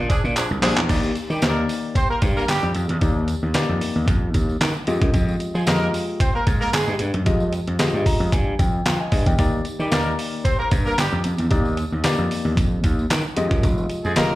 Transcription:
0.10 F3 D4 G#4, kick, closed hi-hat, tambourine
0.24 A#2, tambourine
0.36 F3 D4 G#4, clap, closed hi-hat, tambourine
0.51 C2
0.62 A#1 F3 A#3 D4 G4 G#4 C5, clap, open hi-hat, tambourine
0.77 E2, clap, closed hi-hat
0.89 D#2 A#3 D#4 G4 D5, kick, closed hi-hat, crash, tambourine
1.03 tambourine
1.15 closed hi-hat, tambourine
1.30 D#3 G3 G4, tambourine
1.42 D#2 A#3 D#4 G4 A#4 C5, snare, clap, closed hi-hat, tambourine
1.49 D5
1.69 open hi-hat, tambourine
1.95 C4 C5, kick, closed hi-hat, tambourine
2.10 A#3 A#4
2.22 G2, kick, closed hi-hat, tambourine
2.36 A#3 A#4, tambourine
2.48 G3 G4, snare, clap, closed hi-hat, tambourine
2.63 F2
2.75 F2, closed hi-hat, tambourine
2.89 E2, closed hi-hat
3.01 D#2 A#3 D#4 G4 D5, kick, closed hi-hat, tambourine
3.28 closed hi-hat, tambourine
3.43 D#2
3.54 A#3 D#4 G4 D5, snare, clap, closed hi-hat, tambourine
3.69 F2
3.81 open hi-hat, tambourine
3.96 D#2
4.08 F2, kick, closed hi-hat, tambourine
4.34 D#2, kick, closed hi-hat, tambourine
4.49 tambourine
4.61 D#3, snare, clap, closed hi-hat, tambourine
4.87 F2 G#3 F4 G4 D#5, closed hi-hat, tambourine
5.02 F#2, kick, closed hi-hat
5.14 F2, kick, closed hi-hat, tambourine
5.28 tambourine
5.40 closed hi-hat, tambourine
5.55 F3 G#3 G#4, tambourine
5.67 F2 G#3 A#3 F4 G4 A#4 D#5, snare, clap, closed hi-hat, tambourine
5.94 open hi-hat, tambourine
6.20 C4 C5, kick, closed hi-hat, tambourine
6.34 A#3 A#4
6.47 G#2, kick, closed hi-hat, tambourine
6.61 A#3 A#4, tambourine
6.73 G#3 G#4, snare, clap, closed hi-hat, tambourine
6.87 G2
6.99 G2, closed hi-hat, tambourine
7.14 F#2, closed hi-hat
7.26 F2 G#3 F4 G4 D#5, kick, closed hi-hat, tambourine
7.40 tambourine
7.53 closed hi-hat, tambourine
7.67 F2, closed hi-hat
7.79 G#3 F4 G4 D#5, snare, clap, closed hi-hat, tambourine
7.93 G2
8.06 A#5, kick, open hi-hat, tambourine
8.20 F2
8.32 G2 G#5, kick, closed hi-hat, tambourine
8.59 F2 G5, kick, closed hi-hat, tambourine
8.86 F3 F5 G5 C6, snare, clap, closed hi-hat, tambourine
9.00 D#5 G#5
9.12 G2 D#5, kick, open hi-hat, tambourine
9.26 E2 D5 G5, kick, closed hi-hat, tambourine
9.39 D#2 A#3 D#4 G4 D5, kick, closed hi-hat, tambourine
9.65 closed hi-hat, tambourine
9.79 D#3 G3 G4, tambourine
9.91 D#2 A#3 D#4 G4 A#4 D5, snare, clap, closed hi-hat, tambourine
10.19 open hi-hat, tambourine
10.45 C4 C5, kick, closed hi-hat, tambourine
10.59 A#3 A#4
10.71 G2, kick, closed hi-hat, tambourine
10.85 A#3 A#4, tambourine
10.98 G3 G4, snare, clap, closed hi-hat, tambourine
11.12 F2
11.24 F2, closed hi-hat, tambourine
11.38 E2, closed hi-hat, tambourine
11.50 D#2 A#3 D#4 G4 D5, kick, closed hi-hat, tambourine
11.65 tambourine
11.77 closed hi-hat, tambourine
11.92 D#2
12.04 A#3 D#4 G4 D5, snare, clap, closed hi-hat, tambourine
12.18 F2
12.31 open hi-hat, tambourine
12.45 D#2
12.57 F2, kick, closed hi-hat, tambourine
12.84 D#2, kick, closed hi-hat, tambourine
12.99 tambourine
13.10 D#3, snare, clap, closed hi-hat, tambourine
13.36 F2 G#3 F4 G4 D#5, closed hi-hat, tambourine
13.51 F#2, kick, closed hi-hat, tambourine
13.63 F1, kick, closed hi-hat, tambourine
13.78 tambourine
13.90 closed hi-hat, tambourine
14.04 F2 G#3 G#4, tambourine
14.16 F1 G#3 A#3 F4 G4 A#4 D#5, snare, clap, closed hi-hat, tambourine

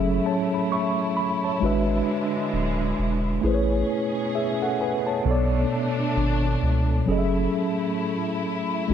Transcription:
Already playing: F#1 A2 F#3 A3 C#4 E4 G#4 A4 E5
0.26 C#5 A5
0.54 B5
0.72 E5 C#6
1.17 B5
1.44 C#5 A5
1.60 G#1 D3 G#3 D4 F#4
1.65 B4 E5
2.53 D1
2.99 E1
3.41 A1 B2 A3 C#4 E4 G#4
3.46 B4 C5
3.54 C#5
4.35 G#4 E5
4.62 A4 F#5
4.81 B4 G#5
5.07 C#5 A5
5.25 B1 B2 A3 B3 D4 A4
5.29 C#5 D5
6.17 G#1
6.63 C#2
7.06 F#1 A2 F#3 A3 C#4 E4 G#4
7.10 A4 D#5
7.18 E5
8.88 G#1 D3 G#3 D4

